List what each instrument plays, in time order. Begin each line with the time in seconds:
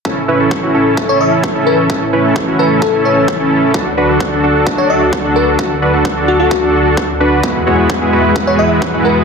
0.05 analog synth pad A2 E3 C#4 A4, supersaw synth C#4 E4 A4, kick
0.28 supersaw synth C#4 E4 B4
0.40 supersaw synth C#4 E4 A4
0.51 kick
0.63 supersaw synth C#4 E4 F#4
0.74 supersaw synth C#4 E4 A4
0.97 kick
1.09 fm electric piano C#5
1.21 fm electric piano E5
1.44 kick
1.55 supersaw synth C#4 E4 A4
1.67 fm electric piano B4
1.90 supersaw synth C#4 E4 A4, analog synth pad B4, kick
2.13 supersaw synth C#4 E4 B4
2.24 supersaw synth C#4 E4 A4
2.36 kick
2.47 supersaw synth C#4 E4 F#4
2.59 supersaw synth C#4 E4 A4, fm electric piano B4
2.82 fm electric piano A4, kick
3.05 fm electric piano C#5
3.28 kick
3.40 supersaw synth C#4 E4 A4
3.74 analog synth pad D2 D3 F#4 A4, kick
3.97 supersaw synth D4 F#4 B4
4.09 supersaw synth D4 F#4 A4
4.20 kick
4.32 supersaw synth D4 F#4 A4
4.43 supersaw synth D4 F#4 A4
4.67 kick
4.78 fm electric piano C#5
4.90 fm electric piano E5
5.13 kick
5.24 supersaw synth D4 F#4 A4
5.36 fm electric piano B4
5.59 supersaw synth F#4, kick
5.82 supersaw synth D4 F#4 B4
5.93 supersaw synth D4 F#4 A4
6.05 kick
6.16 supersaw synth D4 F#4 A4
6.28 supersaw synth D4 F#4 A4, fm electric piano F#4
6.40 fm electric piano F#4
6.51 kick
6.97 kick
7.20 supersaw synth D4 F#4 B4
7.43 analog synth pad E2 E3 G#4, supersaw synth G#3 B3, kick
7.67 supersaw synth G#3 B3 E4 F#4 C#5
7.78 supersaw synth G#3 B3 E4 F#4 B4
7.90 kick
8.01 supersaw synth G#3 B3 E4 F#4 G#4
8.13 supersaw synth G#3 B3 E4 F#4 B4
8.36 kick
8.47 fm electric piano C#5
8.59 fm electric piano E5
8.82 kick
8.93 supersaw synth G#3 B3 E4 F#4 B4
9.05 fm electric piano B4